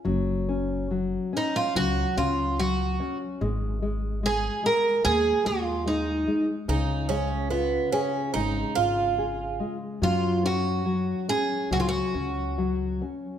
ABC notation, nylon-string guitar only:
X:1
M:4/4
L:1/8
Q:1/4=72
K:C#mix
V:1 name="Nylon-string guitar" clef=bass
F, C F, C F, C F, C | G, G, G, G, G, G, G, G, | C, G, E G G, E G G, | F, C F, C F, C F, C |]